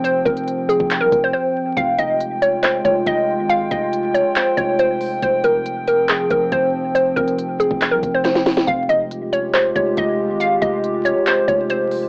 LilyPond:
<<
  \new Staff \with { instrumentName = "Synth pluck" } { \time 4/4 \key f \minor \tempo 4 = 139 c''8 bes'8 r8 aes'8. bes'8 c''16 c''4 | f''8 ees''8 r8 des''8 c''8 des''8 ees''4 | f''8 ees''8 r8 des''8 c''8 des''8 c''4 | c''8 bes'8 r8 bes'8 aes'8 bes'8 c''4 |
c''8 bes'8 r8 aes'8. bes'8 c''16 c''4 | f''8 ees''8 r8 des''8 c''8 des''8 ees''4 | f''8 ees''8 r8 des''8 c''8 des''8 c''4 | }
  \new Staff \with { instrumentName = "Analog synth pad" } { \time 4/4 \key f \minor << { g''1~ | g''1~ | g''1~ | g''1~ |
g''1 | g'1~ | g'1 | } \\ { <f c'>1 | <aes f'>1~ | <aes f'>1 | <f c'>1~ |
<f c'>1 | <aes f'>1~ | <aes f'>1 | } >> }
  \new Staff \with { instrumentName = "808-style bass" } { \clef bass \time 4/4 \key f \minor f,,8 f,,4~ f,,16 f,,8 c,16 f,,8 r4 | f,,8 f,,2 f,,8 f,,8. aes,,16~ | aes,,8 f,,4~ f,,16 r8. f,,4. | f,,8 f,,2 f,,8 f,,4~ |
f,,8 f,,4~ f,,16 f,,8 c,16 f,,4. | f,,8 f,,2 f,,8 f,,8. aes,,16~ | aes,,8 f,,4~ f,,16 r8. f,,4. | }
  \new DrumStaff \with { instrumentName = "Drums" } \drummode { \time 4/4 hh8 <hh bd>16 hh16 hh8 hh16 bd16 <hc hh>8 <hh bd>8 r4 | <hh bd>8 hh8 hh8 hh8 <hc hh>8 <hh bd>8 <hh bd>4 | hh8 <hh bd>8 hh8 hh8 <hc hh>8 <hh bd>8 hh8 hho8 | <hh bd>8 hh8 hh8 hh8 <hc hh>8 <hh bd>8 <hh bd>4 |
hh8 <hh bd>16 hh16 hh8 hh16 bd16 <hc hh>8 <hh bd>8 <hh sn>16 sn16 <hho sn>16 sn16 | <hh bd>8 hh8 hh8 hh8 <hc hh>8 <hh bd>8 <hh bd>4 | hh8 <hh bd>8 hh8 hh8 <hc hh>8 <hh bd>8 hh8 hho8 | }
>>